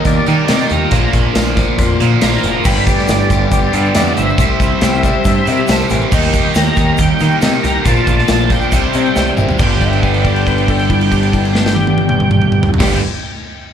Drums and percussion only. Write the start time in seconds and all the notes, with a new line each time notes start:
0.05 kick, closed hi-hat
0.26 closed hi-hat
0.48 snare, closed hi-hat, tambourine
0.60 snare
0.70 closed hi-hat
0.91 kick, closed hi-hat
1.13 kick, closed hi-hat
1.35 snare, closed hi-hat, tambourine
1.57 kick, closed hi-hat
1.79 kick, closed hi-hat
2.00 closed hi-hat
2.21 snare, closed hi-hat, tambourine
2.33 snare
2.44 closed hi-hat
2.65 kick, crash, shaker
2.87 kick, closed hi-hat, shaker
2.99 snare
3.08 snare, closed hi-hat, tambourine, shaker
3.20 shaker
3.30 kick, closed hi-hat, shaker
3.51 kick, closed hi-hat, shaker
3.73 closed hi-hat, shaker
3.85 shaker
3.95 snare, closed hi-hat, tambourine, shaker
4.07 shaker
4.17 closed hi-hat, shaker
4.29 shaker
4.38 kick, closed hi-hat, shaker
4.60 kick, closed hi-hat, shaker
4.81 snare, closed hi-hat, tambourine, shaker
4.94 shaker
5.03 kick, closed hi-hat, shaker
5.25 kick, closed hi-hat, shaker
5.46 closed hi-hat, shaker
5.57 shaker
5.67 snare, closed hi-hat, tambourine, shaker
5.79 snare, shaker
5.89 closed hi-hat, shaker
6.01 shaker
6.12 kick, crash, shaker
6.33 kick, closed hi-hat, shaker
6.55 snare, closed hi-hat, tambourine, shaker
6.65 shaker
6.76 kick, closed hi-hat, shaker
6.98 kick, closed hi-hat, shaker
7.19 closed hi-hat, shaker
7.31 shaker
7.42 snare, closed hi-hat, tambourine, shaker
7.53 shaker
7.64 closed hi-hat, shaker
7.86 kick, closed hi-hat, shaker
7.96 shaker
8.07 kick, closed hi-hat, shaker
8.18 snare
8.28 snare, closed hi-hat, tambourine, shaker
8.40 shaker
8.50 kick, closed hi-hat
8.61 shaker
8.72 kick, closed hi-hat, shaker
8.93 closed hi-hat, shaker
9.06 shaker
9.16 snare, shaker
9.27 shaker
9.37 mid tom, shaker
9.49 floor tom, shaker
9.59 kick, crash, shaker
9.81 kick, crash
9.93 crash
10.03 kick, crash
10.14 crash
10.25 kick, crash
10.36 crash
10.47 kick, crash
10.58 crash
10.68 kick, crash
10.79 crash
10.90 kick, crash
11.01 crash
11.12 kick, crash
11.23 crash
11.33 kick, crash
11.45 crash
11.55 snare
11.66 snare
11.76 high tom
11.87 high tom
11.98 high tom
12.09 mid tom
12.20 mid tom
12.31 mid tom
12.42 mid tom
12.52 mid tom
12.63 floor tom
12.74 floor tom
12.80 kick, snare, crash